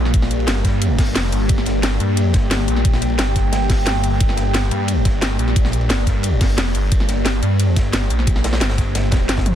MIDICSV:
0, 0, Header, 1, 4, 480
1, 0, Start_track
1, 0, Key_signature, -2, "minor"
1, 0, Tempo, 338983
1, 195, Time_signature, 4, 2, 24, 8
1, 13523, End_track
2, 0, Start_track
2, 0, Title_t, "Ambient pad"
2, 0, Program_c, 0, 92
2, 0, Note_on_c, 0, 58, 84
2, 0, Note_on_c, 0, 67, 74
2, 0, Note_on_c, 0, 74, 94
2, 2101, Note_off_c, 0, 74, 0
2, 2114, Note_on_c, 0, 79, 89
2, 5940, Note_off_c, 0, 79, 0
2, 5953, Note_on_c, 0, 74, 94
2, 9779, Note_off_c, 0, 74, 0
2, 9794, Note_on_c, 0, 72, 86
2, 13523, Note_off_c, 0, 58, 0
2, 13523, Note_off_c, 0, 67, 0
2, 13523, Note_off_c, 0, 72, 0
2, 13523, End_track
3, 0, Start_track
3, 0, Title_t, "Detuned saw bass"
3, 0, Program_c, 1, 39
3, 0, Note_on_c, 1, 34, 101
3, 416, Note_off_c, 1, 34, 0
3, 435, Note_on_c, 1, 34, 102
3, 656, Note_off_c, 1, 34, 0
3, 675, Note_on_c, 1, 31, 100
3, 895, Note_off_c, 1, 31, 0
3, 915, Note_on_c, 1, 43, 91
3, 1376, Note_off_c, 1, 43, 0
3, 1395, Note_on_c, 1, 31, 94
3, 1616, Note_off_c, 1, 31, 0
3, 1635, Note_on_c, 1, 29, 100
3, 1856, Note_off_c, 1, 29, 0
3, 1875, Note_on_c, 1, 31, 104
3, 2096, Note_off_c, 1, 31, 0
3, 2115, Note_on_c, 1, 31, 99
3, 2336, Note_off_c, 1, 31, 0
3, 2354, Note_on_c, 1, 31, 98
3, 2815, Note_off_c, 1, 31, 0
3, 2834, Note_on_c, 1, 43, 97
3, 3295, Note_off_c, 1, 43, 0
3, 3314, Note_on_c, 1, 31, 98
3, 3775, Note_off_c, 1, 31, 0
3, 3794, Note_on_c, 1, 34, 96
3, 4255, Note_off_c, 1, 34, 0
3, 4275, Note_on_c, 1, 34, 97
3, 4496, Note_off_c, 1, 34, 0
3, 4515, Note_on_c, 1, 31, 98
3, 4736, Note_off_c, 1, 31, 0
3, 4755, Note_on_c, 1, 31, 91
3, 5935, Note_off_c, 1, 31, 0
3, 5954, Note_on_c, 1, 31, 99
3, 6175, Note_off_c, 1, 31, 0
3, 6195, Note_on_c, 1, 31, 97
3, 6656, Note_off_c, 1, 31, 0
3, 6675, Note_on_c, 1, 43, 89
3, 7136, Note_off_c, 1, 43, 0
3, 7155, Note_on_c, 1, 31, 96
3, 7616, Note_off_c, 1, 31, 0
3, 7635, Note_on_c, 1, 34, 99
3, 8096, Note_off_c, 1, 34, 0
3, 8116, Note_on_c, 1, 34, 99
3, 8336, Note_off_c, 1, 34, 0
3, 8354, Note_on_c, 1, 31, 100
3, 8575, Note_off_c, 1, 31, 0
3, 8595, Note_on_c, 1, 43, 92
3, 9056, Note_off_c, 1, 43, 0
3, 9075, Note_on_c, 1, 31, 101
3, 9296, Note_off_c, 1, 31, 0
3, 9315, Note_on_c, 1, 29, 99
3, 9535, Note_off_c, 1, 29, 0
3, 9555, Note_on_c, 1, 31, 98
3, 9776, Note_off_c, 1, 31, 0
3, 9795, Note_on_c, 1, 31, 99
3, 10016, Note_off_c, 1, 31, 0
3, 10034, Note_on_c, 1, 31, 102
3, 10495, Note_off_c, 1, 31, 0
3, 10515, Note_on_c, 1, 43, 95
3, 10976, Note_off_c, 1, 43, 0
3, 10995, Note_on_c, 1, 31, 96
3, 11456, Note_off_c, 1, 31, 0
3, 11475, Note_on_c, 1, 34, 98
3, 11936, Note_off_c, 1, 34, 0
3, 11955, Note_on_c, 1, 34, 98
3, 12176, Note_off_c, 1, 34, 0
3, 12196, Note_on_c, 1, 31, 99
3, 12416, Note_off_c, 1, 31, 0
3, 12435, Note_on_c, 1, 31, 96
3, 13136, Note_off_c, 1, 31, 0
3, 13156, Note_on_c, 1, 31, 102
3, 13523, Note_off_c, 1, 31, 0
3, 13523, End_track
4, 0, Start_track
4, 0, Title_t, "Drums"
4, 76, Note_on_c, 9, 40, 35
4, 195, Note_on_c, 9, 36, 127
4, 196, Note_on_c, 9, 42, 96
4, 206, Note_on_c, 9, 51, 84
4, 217, Note_off_c, 9, 40, 0
4, 316, Note_on_c, 9, 40, 47
4, 328, Note_on_c, 9, 38, 38
4, 337, Note_off_c, 9, 36, 0
4, 337, Note_off_c, 9, 42, 0
4, 348, Note_off_c, 9, 51, 0
4, 436, Note_on_c, 9, 42, 66
4, 437, Note_on_c, 9, 51, 68
4, 458, Note_off_c, 9, 40, 0
4, 470, Note_off_c, 9, 38, 0
4, 566, Note_off_c, 9, 51, 0
4, 566, Note_on_c, 9, 51, 49
4, 578, Note_off_c, 9, 42, 0
4, 668, Note_on_c, 9, 38, 125
4, 672, Note_off_c, 9, 51, 0
4, 672, Note_on_c, 9, 51, 84
4, 676, Note_off_c, 9, 38, 0
4, 676, Note_on_c, 9, 38, 126
4, 676, Note_on_c, 9, 42, 96
4, 814, Note_off_c, 9, 51, 0
4, 817, Note_off_c, 9, 38, 0
4, 817, Note_off_c, 9, 42, 0
4, 915, Note_on_c, 9, 36, 64
4, 916, Note_on_c, 9, 42, 69
4, 917, Note_on_c, 9, 51, 74
4, 927, Note_on_c, 9, 38, 47
4, 1057, Note_off_c, 9, 36, 0
4, 1058, Note_off_c, 9, 42, 0
4, 1059, Note_off_c, 9, 51, 0
4, 1069, Note_off_c, 9, 38, 0
4, 1156, Note_on_c, 9, 42, 96
4, 1156, Note_on_c, 9, 51, 79
4, 1297, Note_off_c, 9, 51, 0
4, 1298, Note_off_c, 9, 42, 0
4, 1392, Note_on_c, 9, 46, 76
4, 1395, Note_on_c, 9, 36, 109
4, 1395, Note_on_c, 9, 38, 54
4, 1396, Note_off_c, 9, 38, 0
4, 1396, Note_on_c, 9, 38, 39
4, 1396, Note_on_c, 9, 42, 70
4, 1509, Note_on_c, 9, 51, 49
4, 1534, Note_off_c, 9, 46, 0
4, 1537, Note_off_c, 9, 36, 0
4, 1538, Note_off_c, 9, 38, 0
4, 1538, Note_off_c, 9, 42, 0
4, 1636, Note_on_c, 9, 38, 127
4, 1636, Note_on_c, 9, 42, 95
4, 1638, Note_off_c, 9, 38, 0
4, 1638, Note_on_c, 9, 38, 127
4, 1640, Note_off_c, 9, 51, 0
4, 1640, Note_on_c, 9, 51, 98
4, 1778, Note_off_c, 9, 42, 0
4, 1780, Note_off_c, 9, 38, 0
4, 1781, Note_off_c, 9, 51, 0
4, 1874, Note_on_c, 9, 51, 66
4, 1875, Note_on_c, 9, 42, 66
4, 2016, Note_off_c, 9, 51, 0
4, 2017, Note_off_c, 9, 42, 0
4, 2108, Note_on_c, 9, 51, 86
4, 2115, Note_on_c, 9, 36, 127
4, 2116, Note_on_c, 9, 42, 93
4, 2236, Note_on_c, 9, 40, 49
4, 2250, Note_off_c, 9, 51, 0
4, 2257, Note_off_c, 9, 36, 0
4, 2257, Note_off_c, 9, 42, 0
4, 2343, Note_on_c, 9, 51, 66
4, 2356, Note_on_c, 9, 42, 65
4, 2358, Note_on_c, 9, 38, 45
4, 2378, Note_off_c, 9, 40, 0
4, 2485, Note_off_c, 9, 51, 0
4, 2497, Note_off_c, 9, 42, 0
4, 2499, Note_off_c, 9, 38, 0
4, 2594, Note_on_c, 9, 38, 127
4, 2595, Note_off_c, 9, 38, 0
4, 2595, Note_on_c, 9, 38, 126
4, 2595, Note_on_c, 9, 42, 92
4, 2607, Note_on_c, 9, 51, 88
4, 2737, Note_off_c, 9, 38, 0
4, 2737, Note_off_c, 9, 42, 0
4, 2748, Note_off_c, 9, 51, 0
4, 2835, Note_on_c, 9, 42, 65
4, 2846, Note_on_c, 9, 51, 64
4, 2977, Note_off_c, 9, 42, 0
4, 2987, Note_off_c, 9, 51, 0
4, 3071, Note_on_c, 9, 51, 83
4, 3075, Note_on_c, 9, 42, 94
4, 3212, Note_off_c, 9, 51, 0
4, 3216, Note_off_c, 9, 42, 0
4, 3302, Note_on_c, 9, 38, 58
4, 3312, Note_on_c, 9, 51, 75
4, 3314, Note_on_c, 9, 36, 110
4, 3315, Note_on_c, 9, 42, 66
4, 3444, Note_off_c, 9, 38, 0
4, 3453, Note_off_c, 9, 51, 0
4, 3456, Note_off_c, 9, 36, 0
4, 3456, Note_off_c, 9, 42, 0
4, 3554, Note_on_c, 9, 38, 127
4, 3554, Note_on_c, 9, 42, 93
4, 3556, Note_on_c, 9, 51, 100
4, 3562, Note_off_c, 9, 38, 0
4, 3562, Note_on_c, 9, 38, 125
4, 3696, Note_off_c, 9, 42, 0
4, 3698, Note_off_c, 9, 51, 0
4, 3703, Note_off_c, 9, 38, 0
4, 3791, Note_on_c, 9, 51, 71
4, 3795, Note_on_c, 9, 42, 64
4, 3914, Note_on_c, 9, 40, 36
4, 3933, Note_off_c, 9, 51, 0
4, 3936, Note_off_c, 9, 42, 0
4, 4034, Note_on_c, 9, 36, 127
4, 4034, Note_on_c, 9, 42, 90
4, 4034, Note_on_c, 9, 51, 82
4, 4056, Note_off_c, 9, 40, 0
4, 4153, Note_on_c, 9, 38, 40
4, 4155, Note_on_c, 9, 40, 46
4, 4176, Note_off_c, 9, 36, 0
4, 4176, Note_off_c, 9, 42, 0
4, 4176, Note_off_c, 9, 51, 0
4, 4275, Note_on_c, 9, 42, 66
4, 4280, Note_on_c, 9, 51, 74
4, 4295, Note_off_c, 9, 38, 0
4, 4296, Note_off_c, 9, 40, 0
4, 4385, Note_off_c, 9, 51, 0
4, 4385, Note_on_c, 9, 51, 42
4, 4416, Note_off_c, 9, 42, 0
4, 4509, Note_on_c, 9, 38, 123
4, 4514, Note_off_c, 9, 38, 0
4, 4514, Note_off_c, 9, 51, 0
4, 4514, Note_on_c, 9, 38, 122
4, 4514, Note_on_c, 9, 42, 90
4, 4514, Note_on_c, 9, 51, 98
4, 4656, Note_off_c, 9, 38, 0
4, 4656, Note_off_c, 9, 42, 0
4, 4656, Note_off_c, 9, 51, 0
4, 4753, Note_on_c, 9, 51, 72
4, 4754, Note_on_c, 9, 36, 66
4, 4755, Note_on_c, 9, 42, 64
4, 4761, Note_on_c, 9, 38, 38
4, 4894, Note_off_c, 9, 51, 0
4, 4896, Note_off_c, 9, 36, 0
4, 4896, Note_off_c, 9, 42, 0
4, 4903, Note_off_c, 9, 38, 0
4, 4991, Note_on_c, 9, 38, 102
4, 4994, Note_on_c, 9, 42, 90
4, 4997, Note_on_c, 9, 51, 74
4, 5133, Note_off_c, 9, 38, 0
4, 5136, Note_off_c, 9, 42, 0
4, 5139, Note_off_c, 9, 51, 0
4, 5232, Note_on_c, 9, 38, 61
4, 5233, Note_on_c, 9, 46, 78
4, 5235, Note_off_c, 9, 38, 0
4, 5235, Note_on_c, 9, 36, 106
4, 5235, Note_on_c, 9, 38, 41
4, 5235, Note_on_c, 9, 42, 64
4, 5361, Note_on_c, 9, 51, 47
4, 5374, Note_off_c, 9, 46, 0
4, 5376, Note_off_c, 9, 36, 0
4, 5376, Note_off_c, 9, 38, 0
4, 5376, Note_off_c, 9, 42, 0
4, 5461, Note_off_c, 9, 51, 0
4, 5461, Note_on_c, 9, 51, 98
4, 5474, Note_on_c, 9, 38, 127
4, 5474, Note_on_c, 9, 42, 92
4, 5481, Note_off_c, 9, 38, 0
4, 5481, Note_on_c, 9, 38, 127
4, 5603, Note_off_c, 9, 51, 0
4, 5616, Note_off_c, 9, 42, 0
4, 5623, Note_off_c, 9, 38, 0
4, 5714, Note_on_c, 9, 51, 70
4, 5715, Note_on_c, 9, 42, 64
4, 5856, Note_off_c, 9, 42, 0
4, 5856, Note_off_c, 9, 51, 0
4, 5955, Note_on_c, 9, 36, 127
4, 5955, Note_on_c, 9, 42, 94
4, 5958, Note_on_c, 9, 51, 95
4, 6075, Note_on_c, 9, 40, 45
4, 6096, Note_off_c, 9, 36, 0
4, 6097, Note_off_c, 9, 42, 0
4, 6099, Note_off_c, 9, 51, 0
4, 6186, Note_on_c, 9, 38, 41
4, 6189, Note_on_c, 9, 51, 72
4, 6195, Note_on_c, 9, 42, 64
4, 6217, Note_off_c, 9, 40, 0
4, 6327, Note_off_c, 9, 38, 0
4, 6331, Note_off_c, 9, 51, 0
4, 6337, Note_off_c, 9, 42, 0
4, 6428, Note_on_c, 9, 51, 92
4, 6435, Note_on_c, 9, 38, 121
4, 6435, Note_on_c, 9, 42, 90
4, 6437, Note_off_c, 9, 38, 0
4, 6437, Note_on_c, 9, 38, 127
4, 6570, Note_off_c, 9, 51, 0
4, 6577, Note_off_c, 9, 42, 0
4, 6579, Note_off_c, 9, 38, 0
4, 6673, Note_on_c, 9, 51, 70
4, 6675, Note_on_c, 9, 42, 67
4, 6815, Note_off_c, 9, 51, 0
4, 6816, Note_off_c, 9, 42, 0
4, 6907, Note_on_c, 9, 51, 99
4, 6915, Note_on_c, 9, 42, 92
4, 7049, Note_off_c, 9, 51, 0
4, 7057, Note_off_c, 9, 42, 0
4, 7153, Note_on_c, 9, 38, 54
4, 7154, Note_on_c, 9, 36, 108
4, 7155, Note_on_c, 9, 42, 68
4, 7159, Note_on_c, 9, 51, 74
4, 7295, Note_off_c, 9, 38, 0
4, 7296, Note_off_c, 9, 36, 0
4, 7297, Note_off_c, 9, 42, 0
4, 7301, Note_off_c, 9, 51, 0
4, 7385, Note_on_c, 9, 38, 127
4, 7389, Note_on_c, 9, 51, 90
4, 7395, Note_off_c, 9, 38, 0
4, 7395, Note_on_c, 9, 38, 126
4, 7395, Note_on_c, 9, 42, 92
4, 7530, Note_off_c, 9, 51, 0
4, 7537, Note_off_c, 9, 38, 0
4, 7537, Note_off_c, 9, 42, 0
4, 7633, Note_on_c, 9, 51, 61
4, 7636, Note_on_c, 9, 42, 63
4, 7756, Note_on_c, 9, 40, 34
4, 7774, Note_off_c, 9, 51, 0
4, 7777, Note_off_c, 9, 42, 0
4, 7871, Note_on_c, 9, 51, 89
4, 7875, Note_on_c, 9, 36, 120
4, 7876, Note_on_c, 9, 42, 93
4, 7897, Note_off_c, 9, 40, 0
4, 7997, Note_on_c, 9, 40, 44
4, 8001, Note_on_c, 9, 38, 39
4, 8013, Note_off_c, 9, 51, 0
4, 8016, Note_off_c, 9, 36, 0
4, 8018, Note_off_c, 9, 42, 0
4, 8100, Note_on_c, 9, 51, 64
4, 8117, Note_on_c, 9, 42, 67
4, 8138, Note_off_c, 9, 40, 0
4, 8143, Note_off_c, 9, 38, 0
4, 8226, Note_off_c, 9, 51, 0
4, 8226, Note_on_c, 9, 51, 46
4, 8258, Note_off_c, 9, 42, 0
4, 8348, Note_off_c, 9, 51, 0
4, 8348, Note_on_c, 9, 51, 91
4, 8351, Note_on_c, 9, 38, 111
4, 8356, Note_off_c, 9, 38, 0
4, 8356, Note_on_c, 9, 38, 123
4, 8356, Note_on_c, 9, 42, 94
4, 8490, Note_off_c, 9, 51, 0
4, 8497, Note_off_c, 9, 38, 0
4, 8497, Note_off_c, 9, 42, 0
4, 8588, Note_on_c, 9, 51, 72
4, 8595, Note_on_c, 9, 36, 60
4, 8595, Note_on_c, 9, 42, 68
4, 8599, Note_on_c, 9, 38, 39
4, 8730, Note_off_c, 9, 51, 0
4, 8736, Note_off_c, 9, 36, 0
4, 8737, Note_off_c, 9, 42, 0
4, 8741, Note_off_c, 9, 38, 0
4, 8822, Note_on_c, 9, 51, 94
4, 8836, Note_on_c, 9, 42, 96
4, 8963, Note_off_c, 9, 51, 0
4, 8977, Note_off_c, 9, 42, 0
4, 9075, Note_on_c, 9, 36, 101
4, 9075, Note_on_c, 9, 38, 38
4, 9075, Note_on_c, 9, 42, 68
4, 9080, Note_off_c, 9, 38, 0
4, 9080, Note_on_c, 9, 38, 51
4, 9080, Note_on_c, 9, 46, 86
4, 9202, Note_on_c, 9, 51, 41
4, 9216, Note_off_c, 9, 36, 0
4, 9217, Note_off_c, 9, 42, 0
4, 9221, Note_off_c, 9, 38, 0
4, 9221, Note_off_c, 9, 46, 0
4, 9315, Note_on_c, 9, 38, 118
4, 9315, Note_on_c, 9, 42, 93
4, 9317, Note_off_c, 9, 51, 0
4, 9317, Note_on_c, 9, 51, 99
4, 9321, Note_off_c, 9, 38, 0
4, 9321, Note_on_c, 9, 38, 127
4, 9457, Note_off_c, 9, 42, 0
4, 9459, Note_off_c, 9, 51, 0
4, 9462, Note_off_c, 9, 38, 0
4, 9552, Note_on_c, 9, 51, 66
4, 9555, Note_on_c, 9, 42, 64
4, 9694, Note_off_c, 9, 51, 0
4, 9696, Note_off_c, 9, 42, 0
4, 9793, Note_on_c, 9, 51, 88
4, 9794, Note_on_c, 9, 42, 97
4, 9795, Note_on_c, 9, 36, 116
4, 9915, Note_on_c, 9, 40, 47
4, 9934, Note_off_c, 9, 51, 0
4, 9936, Note_off_c, 9, 42, 0
4, 9937, Note_off_c, 9, 36, 0
4, 10032, Note_on_c, 9, 38, 43
4, 10035, Note_on_c, 9, 42, 71
4, 10042, Note_on_c, 9, 51, 74
4, 10057, Note_off_c, 9, 40, 0
4, 10174, Note_off_c, 9, 38, 0
4, 10176, Note_off_c, 9, 42, 0
4, 10183, Note_off_c, 9, 51, 0
4, 10267, Note_on_c, 9, 38, 115
4, 10275, Note_off_c, 9, 38, 0
4, 10275, Note_on_c, 9, 38, 121
4, 10275, Note_on_c, 9, 42, 95
4, 10279, Note_on_c, 9, 51, 92
4, 10417, Note_off_c, 9, 38, 0
4, 10417, Note_off_c, 9, 42, 0
4, 10420, Note_off_c, 9, 51, 0
4, 10515, Note_on_c, 9, 42, 67
4, 10516, Note_on_c, 9, 51, 67
4, 10657, Note_off_c, 9, 42, 0
4, 10658, Note_off_c, 9, 51, 0
4, 10755, Note_on_c, 9, 42, 96
4, 10761, Note_on_c, 9, 51, 88
4, 10896, Note_off_c, 9, 42, 0
4, 10903, Note_off_c, 9, 51, 0
4, 10995, Note_on_c, 9, 36, 98
4, 10995, Note_on_c, 9, 42, 68
4, 10997, Note_on_c, 9, 51, 71
4, 11001, Note_on_c, 9, 38, 59
4, 11137, Note_off_c, 9, 36, 0
4, 11137, Note_off_c, 9, 42, 0
4, 11138, Note_off_c, 9, 51, 0
4, 11142, Note_off_c, 9, 38, 0
4, 11226, Note_on_c, 9, 51, 90
4, 11235, Note_on_c, 9, 38, 115
4, 11235, Note_on_c, 9, 42, 101
4, 11245, Note_off_c, 9, 38, 0
4, 11245, Note_on_c, 9, 38, 119
4, 11368, Note_off_c, 9, 51, 0
4, 11376, Note_off_c, 9, 42, 0
4, 11386, Note_off_c, 9, 38, 0
4, 11475, Note_on_c, 9, 42, 66
4, 11478, Note_on_c, 9, 51, 68
4, 11595, Note_on_c, 9, 40, 33
4, 11617, Note_off_c, 9, 42, 0
4, 11620, Note_off_c, 9, 51, 0
4, 11707, Note_on_c, 9, 51, 93
4, 11715, Note_on_c, 9, 36, 120
4, 11715, Note_on_c, 9, 42, 98
4, 11737, Note_off_c, 9, 40, 0
4, 11834, Note_on_c, 9, 40, 47
4, 11837, Note_on_c, 9, 38, 36
4, 11849, Note_off_c, 9, 51, 0
4, 11856, Note_off_c, 9, 42, 0
4, 11857, Note_off_c, 9, 36, 0
4, 11954, Note_on_c, 9, 42, 70
4, 11958, Note_off_c, 9, 38, 0
4, 11958, Note_on_c, 9, 38, 113
4, 11961, Note_on_c, 9, 51, 79
4, 11976, Note_off_c, 9, 40, 0
4, 12075, Note_on_c, 9, 40, 56
4, 12083, Note_off_c, 9, 51, 0
4, 12083, Note_on_c, 9, 51, 76
4, 12085, Note_off_c, 9, 38, 0
4, 12085, Note_on_c, 9, 38, 113
4, 12096, Note_off_c, 9, 42, 0
4, 12185, Note_off_c, 9, 38, 0
4, 12185, Note_on_c, 9, 38, 111
4, 12195, Note_off_c, 9, 38, 0
4, 12195, Note_on_c, 9, 38, 123
4, 12195, Note_on_c, 9, 42, 98
4, 12202, Note_off_c, 9, 51, 0
4, 12202, Note_on_c, 9, 51, 78
4, 12216, Note_off_c, 9, 40, 0
4, 12312, Note_off_c, 9, 51, 0
4, 12312, Note_on_c, 9, 51, 79
4, 12316, Note_off_c, 9, 38, 0
4, 12316, Note_on_c, 9, 38, 108
4, 12337, Note_off_c, 9, 42, 0
4, 12431, Note_off_c, 9, 38, 0
4, 12431, Note_on_c, 9, 38, 43
4, 12435, Note_on_c, 9, 36, 62
4, 12435, Note_on_c, 9, 42, 71
4, 12437, Note_off_c, 9, 51, 0
4, 12437, Note_on_c, 9, 51, 72
4, 12573, Note_off_c, 9, 38, 0
4, 12576, Note_off_c, 9, 36, 0
4, 12577, Note_off_c, 9, 42, 0
4, 12578, Note_off_c, 9, 51, 0
4, 12675, Note_on_c, 9, 42, 98
4, 12676, Note_on_c, 9, 38, 99
4, 12677, Note_on_c, 9, 51, 87
4, 12816, Note_off_c, 9, 42, 0
4, 12818, Note_off_c, 9, 38, 0
4, 12818, Note_off_c, 9, 51, 0
4, 12907, Note_on_c, 9, 51, 80
4, 12915, Note_on_c, 9, 36, 107
4, 12915, Note_on_c, 9, 38, 36
4, 12915, Note_on_c, 9, 42, 69
4, 12916, Note_off_c, 9, 38, 0
4, 12916, Note_on_c, 9, 38, 103
4, 13048, Note_off_c, 9, 51, 0
4, 13057, Note_off_c, 9, 36, 0
4, 13057, Note_off_c, 9, 38, 0
4, 13057, Note_off_c, 9, 42, 0
4, 13155, Note_on_c, 9, 38, 35
4, 13155, Note_on_c, 9, 42, 101
4, 13158, Note_on_c, 9, 51, 61
4, 13266, Note_off_c, 9, 51, 0
4, 13266, Note_on_c, 9, 51, 80
4, 13276, Note_off_c, 9, 38, 0
4, 13276, Note_on_c, 9, 36, 57
4, 13276, Note_on_c, 9, 38, 96
4, 13276, Note_on_c, 9, 48, 53
4, 13297, Note_off_c, 9, 42, 0
4, 13396, Note_on_c, 9, 42, 72
4, 13396, Note_on_c, 9, 47, 79
4, 13407, Note_off_c, 9, 51, 0
4, 13417, Note_off_c, 9, 36, 0
4, 13417, Note_off_c, 9, 38, 0
4, 13417, Note_off_c, 9, 48, 0
4, 13523, Note_off_c, 9, 42, 0
4, 13523, Note_off_c, 9, 47, 0
4, 13523, End_track
0, 0, End_of_file